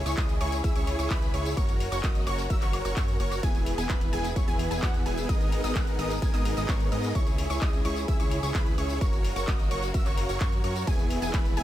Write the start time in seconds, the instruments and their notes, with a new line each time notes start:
Already playing: string section C#3 C#4 E4 G#4
0.06 analog synth bass C#2, supersaw synth E4 G#4 C#5, synth pluck C#6, closed hi-hat, tambourine
0.17 analog synth bass C#2, supersaw synth E4 G#4 D#5, synth pluck D#6, kick, clap, closed hi-hat, tambourine
0.29 closed hi-hat, tambourine
0.41 analog synth bass C#2, supersaw synth E4 G#4 C#5, synth pluck C#6, open hi-hat
0.52 closed hi-hat, tambourine
0.64 analog synth bass C#2, supersaw synth E4 G#4 E5, synth pluck E6, kick, closed hi-hat, tambourine
0.75 analog synth bass C#2, supersaw synth E4 G#4 C#5, synth pluck C#6, closed hi-hat, tambourine
0.87 open hi-hat
0.99 analog synth bass C#2, supersaw synth E4 G#4 C#5, synth pluck C#6, closed hi-hat, tambourine
1.10 analog synth bass C#2, supersaw synth E4 G#4 B4, synth pluck B5, kick, clap, closed hi-hat, tambourine
1.22 closed hi-hat, tambourine
1.34 analog synth bass C#2, supersaw synth E4 G#4 C#5, synth pluck C#6, open hi-hat
1.45 closed hi-hat, tambourine
1.57 analog synth bass F#1, string section A#3 C#4 F#4, supersaw synth F#4 A#4 C#5, synth pluck C#6, kick, closed hi-hat, tambourine
1.69 closed hi-hat, tambourine
1.80 open hi-hat
1.92 analog synth bass F#1, supersaw synth F#4 A#4 C#5, synth pluck C#6, closed hi-hat, tambourine
2.03 analog synth bass F#1, supersaw synth F#4 A#4 D#5, synth pluck D#6, kick, clap, closed hi-hat, tambourine
2.15 closed hi-hat, tambourine
2.27 analog synth bass F#1, supersaw synth F#4 A#4 C#5, synth pluck C#6, open hi-hat, high woodblock
2.38 closed hi-hat, tambourine
2.50 analog synth bass F#1, supersaw synth F#4 A#4 E5, synth pluck E6, kick, closed hi-hat, tambourine
2.62 analog synth bass F#1, supersaw synth F#4 A#4 C#5, synth pluck C#6, clap, closed hi-hat, tambourine
2.73 open hi-hat, high woodblock
2.85 analog synth bass F#1, supersaw synth F#4 A#4 C#5, synth pluck C#6, closed hi-hat, tambourine
2.96 analog synth bass F#2, supersaw synth F#4 A#4 C#5, synth pluck C#6, kick, clap, closed hi-hat, tambourine
3.08 closed hi-hat, tambourine
3.20 analog synth bass F#1, supersaw synth F#4 A#4 C#5, synth pluck C#6, open hi-hat
3.32 closed hi-hat, tambourine, high woodblock
3.43 analog synth bass E1, string section E3 B3 E4 G#4, supersaw synth B3 E4 G#4, synth pluck G#5, kick, closed hi-hat, tambourine
3.55 closed hi-hat, tambourine
3.66 open hi-hat
3.78 analog synth bass E1, supersaw synth B3 E4 G#4, synth pluck G#5, closed hi-hat, tambourine
3.89 analog synth bass E1, supersaw synth B3 E4 B4, synth pluck B5, kick, clap, closed hi-hat, tambourine
4.01 closed hi-hat, tambourine
4.13 analog synth bass E1, supersaw synth B3 E4 G#4, synth pluck G#5, open hi-hat
4.24 closed hi-hat, tambourine
4.36 analog synth bass E1, supersaw synth B3 E4 C#5, synth pluck C#6, kick, closed hi-hat, tambourine
4.48 analog synth bass E1, supersaw synth B3 E4 G#4, synth pluck G#5, closed hi-hat, tambourine
4.59 open hi-hat
4.71 analog synth bass E1, supersaw synth B3 E4 G#4, synth pluck G#5, closed hi-hat, tambourine
4.82 analog synth bass E2, supersaw synth B3 E4 F#4, synth pluck F#5, kick, clap, closed hi-hat
4.94 closed hi-hat, tambourine
5.06 analog synth bass E1, supersaw synth B3 E4 G#4, synth pluck G#5, open hi-hat
5.17 closed hi-hat, tambourine
5.29 analog synth bass G#1, string section G#3 D#4 A#4, supersaw synth B3 D#4 G#4 A#4 D#5, synth pluck D#6, kick, closed hi-hat, tambourine
5.41 closed hi-hat, tambourine
5.52 open hi-hat
5.64 analog synth bass G#1, supersaw synth B3 D#4 G#4 A#4 D#5, synth pluck D#6, closed hi-hat, tambourine
5.75 analog synth bass G#1, supersaw synth B3 D#4 G#4 A#4 F#5, synth pluck F#6, kick, clap, closed hi-hat, tambourine
5.87 closed hi-hat, tambourine
5.99 analog synth bass G#1, supersaw synth B3 D#4 G#4 A#4 D#5, synth pluck D#6, open hi-hat
6.11 closed hi-hat, tambourine
6.22 analog synth bass G#1, supersaw synth B3 D#4 G#4 A#4 G#5, synth pluck G#6, kick, closed hi-hat, tambourine
6.34 analog synth bass G#1, supersaw synth B3 D#4 G#4 A#4 D#5, synth pluck D#6, clap, closed hi-hat, tambourine
6.45 open hi-hat
6.57 analog synth bass G#1, supersaw synth B3 D#4 G#4 A#4 D#5, synth pluck D#6, closed hi-hat, tambourine
6.68 analog synth bass G#1, supersaw synth B3 D#4 G#4 A#4 C#5, synth pluck C#6, kick, clap, closed hi-hat, tambourine
6.80 closed hi-hat, tambourine
6.92 analog synth bass G#2, supersaw synth B3 D#4 G#4 A#4 D#5, synth pluck D#6, open hi-hat
7.04 closed hi-hat, tambourine
7.15 analog synth bass C#2, string section C#3 C#4 E4 G#4, supersaw synth E4 G#4 C#5, synth pluck C#6, kick, closed hi-hat, tambourine
7.27 closed hi-hat, tambourine
7.38 open hi-hat
7.50 analog synth bass C#2, supersaw synth E4 G#4 C#5, synth pluck C#6, closed hi-hat, tambourine
7.61 analog synth bass C#2, supersaw synth E4 G#4 D#5, synth pluck D#6, kick, clap, closed hi-hat, tambourine
7.73 closed hi-hat, tambourine
7.85 analog synth bass C#2, supersaw synth E4 G#4 C#5, synth pluck C#6, open hi-hat
7.97 closed hi-hat, tambourine
8.08 analog synth bass C#2, supersaw synth E4 G#4 E5, synth pluck E6, kick, closed hi-hat, tambourine
8.20 analog synth bass C#2, supersaw synth E4 G#4 C#5, synth pluck C#6, closed hi-hat, tambourine
8.31 open hi-hat
8.43 analog synth bass C#2, supersaw synth E4 G#4 C#5, synth pluck C#6, closed hi-hat, tambourine
8.54 analog synth bass C#2, supersaw synth E4 G#4 B4, synth pluck B5, kick, clap, closed hi-hat, tambourine
8.66 closed hi-hat, tambourine
8.78 analog synth bass C#2, supersaw synth E4 G#4 C#5, synth pluck C#6, open hi-hat
8.90 closed hi-hat, tambourine
9.01 analog synth bass F#1, string section A#3 F#4, supersaw synth F#4 A#4 C#5, synth pluck C#6, kick, closed hi-hat, tambourine
9.13 closed hi-hat, tambourine
9.24 open hi-hat
9.36 analog synth bass F#1, supersaw synth F#4 A#4 C#5, synth pluck C#6, closed hi-hat, tambourine
9.47 analog synth bass F#1, supersaw synth F#4 A#4 D#5, synth pluck D#6, kick, clap, closed hi-hat, tambourine
9.59 closed hi-hat, tambourine
9.71 analog synth bass F#1, supersaw synth F#4 A#4 C#5, synth pluck C#6, open hi-hat
9.83 closed hi-hat, tambourine
9.94 analog synth bass F#1, supersaw synth F#4 A#4 E5, synth pluck E6, kick, closed hi-hat, tambourine
10.06 analog synth bass F#1, supersaw synth F#4 A#4 C#5, synth pluck C#6, clap, closed hi-hat, tambourine
10.17 open hi-hat
10.29 analog synth bass F#1, supersaw synth F#4 A#4 C#5, synth pluck C#6, closed hi-hat, tambourine
10.40 analog synth bass F#2, supersaw synth F#4 A#4 C#5, synth pluck C#6, kick, clap, closed hi-hat, tambourine
10.52 closed hi-hat, tambourine
10.64 analog synth bass F#2, supersaw synth F#4 A#4 C#5, synth pluck C#6, open hi-hat
10.76 closed hi-hat, tambourine
10.87 analog synth bass E1, string section E3 B3 E4 G#4, supersaw synth B3 E4 G#4, synth pluck G#5, kick, closed hi-hat, ride, tambourine
10.99 closed hi-hat, tambourine
11.10 open hi-hat
11.22 analog synth bass E1, supersaw synth B3 E4 G#4, synth pluck G#5, closed hi-hat, tambourine
11.33 analog synth bass E1, supersaw synth B3 E4 B4, synth pluck B5, kick, clap, closed hi-hat, ride, tambourine
11.45 closed hi-hat, tambourine
11.57 analog synth bass E1, supersaw synth B3 E4 G#4, synth pluck G#5, open hi-hat